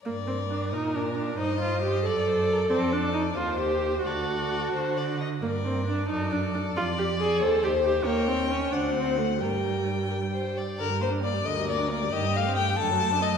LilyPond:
<<
  \new Staff \with { instrumentName = "Violin" } { \time 6/8 \key g \minor \tempo 4. = 90 d''4. bes'4. | ees''4. d''4. | d''4. c''4. | a'2~ a'8 r8 |
d''4. d''4.~ | d''4. c''4. | g''4. fis''4. | g''2~ g''8 r8 |
bes'8 c''8 d''8 ees''8 d''8 d''8 | ees''8 f''8 g''8 a''4 ees''8 | }
  \new Staff \with { instrumentName = "Violin" } { \time 6/8 \key g \minor bes'2. | c''4. d''8 c''8 bes'8 | a'4. c''4. | d''4. c''8 d''8 ees''8 |
bes'4. a'4. | d''4. c''4. | des''4. c''4. | bes'4. bes'8 c''8 d''8 |
r4. bes'4. | g'4. a'4. | }
  \new Staff \with { instrumentName = "Viola" } { \time 6/8 \key g \minor bes8 c'8 d'8 ees'8 d'8 d'8 | ees'8 f'8 g'8 a'4. | c'8 d'8 ees'8 f'8 g'4 | fis'2~ fis'8 r8 |
bes8 c'8 d'8 ees'8 d'8 d'8 | f'8 g'8 aes'8 a'8 g'8 g'8 | bes8 c'8 des'8 d'8 c'8 a8 | g2~ g8 r8 |
d16 g16 bes16 d'16 bes16 g16 d16 g16 bes16 d'16 bes16 g16 | ees16 g16 a16 c'16 a16 g16 d16 fis16 a16 d'16 a16 fis16 | }
  \new Staff \with { instrumentName = "Cello" } { \clef bass \time 6/8 \key g \minor g,4. bes,4. | g,4. fis,4. | f,4. ees,4. | d,4. d4. |
g,4. fis,4. | f,4. ees,4. | ees,4. d,4. | g,2~ g,8 r8 |
g,4. d,4. | g,4. fis,4. | }
>>